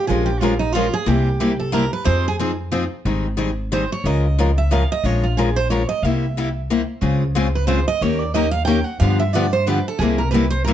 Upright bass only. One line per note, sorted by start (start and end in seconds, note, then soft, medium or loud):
0.09 0.88 A#1 medium
1.07 1.86 C2 medium
2.06 2.86 F2 medium
3.05 3.85 G#1 medium
4.04 4.84 C#2 medium
5.04 5.83 A#1 medium
6.02 6.82 C2 medium
7.02 7.81 C#2 medium
8.01 8.81 D#2 medium
9.01 9.80 G2 medium
9.99 10.73 C2 medium